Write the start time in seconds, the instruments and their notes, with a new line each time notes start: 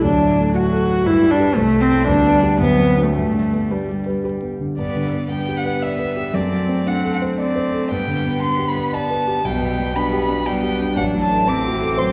0.04 grand piano D2, cello F#3, viola D4
0.21 grand piano A2
0.39 grand piano A3
0.56 grand piano F#4, viola F#4, violin F#5
0.72 grand piano A4
0.90 grand piano F#4
1.06 grand piano G2, cello G3, viola E4, violin B4
1.22 grand piano G3
1.31 viola D4
1.40 grand piano G4 B4
1.56 grand piano C2, viola A3, cello A3, violin C5
1.74 grand piano A3
1.81 viola C4
1.91 grand piano E4 A4
2.06 grand piano D2, cello G3, viola D4, violin B4
2.26 grand piano B3
2.43 grand piano D4 G4
2.61 grand piano D2, cello F#3, viola B3, violin C5
2.78 grand piano C4
2.97 grand piano D4 F#4
3.03 viola A3
3.14 grand piano G2, cello G3, viola A3
3.34 grand piano D3
3.53 grand piano B3
3.71 viola G3, grand piano D4, violin B4
3.89 grand piano G4
4.06 grand piano B4
4.24 grand piano G4, violin B4
4.42 grand piano B3
4.60 grand piano D3
4.78 grand piano G2, cello G3, viola B3, violin D5
4.96 grand piano D3
5.13 grand piano B3
5.31 cello G3, viola B3, grand piano D4, violin G5
5.48 grand piano G4
5.57 violin F#5
5.65 grand piano B4
5.82 grand piano D5, violin E5
5.99 grand piano B4
6.16 grand piano G4
6.33 grand piano F#2, cello A3, viola C4, violin D5
6.51 grand piano F#3
6.68 grand piano C4
6.86 cello A3, viola C4, grand piano D4, violin F#5
7.04 grand piano A4
7.14 violin F#5
7.22 grand piano C5
7.38 cello A3, viola C4, grand piano D5, violin D5
7.56 grand piano C5
7.73 grand piano A4
7.90 grand piano G2, cello G3, viola B3, violin G5
8.08 grand piano D3
8.25 grand piano B3
8.42 grand piano D4, violin C6
8.59 grand piano G4
8.68 violin B5
8.76 grand piano B4
8.93 grand piano D5, violin A5
9.11 grand piano B4
9.28 grand piano G4
9.44 grand piano B1, cello G3, viola B3, violin G5
9.61 grand piano B2
9.78 grand piano G3
9.96 cello G3, viola B3, grand piano D4, violin B5
10.13 grand piano G4
10.21 violin B5
10.29 grand piano D4
10.46 cello G3, viola B3, grand piano D5, violin G5
10.63 grand piano G4
10.80 grand piano D4
10.96 grand piano A1, cello F#3, viola D4, violin F#5
11.14 grand piano A2
11.22 violin A5
11.31 grand piano A3
11.47 cello A3, grand piano C4, viola C4, violin D6
11.64 grand piano F#4
11.73 cello E3
11.81 grand piano A4
11.98 cello F#3, grand piano C5, violin C6